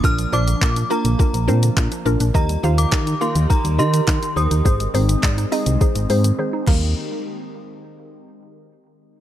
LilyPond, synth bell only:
\new Staff \with { instrumentName = "Synth bell" } { \time 4/4 \key ees \major \tempo 4 = 104 f'''8 d'''4 bes''2 r8 | bes''8. d'''8. c'''8 bes''8 c'''4 ees'''8~ | ees'''2. r4 | r1 | }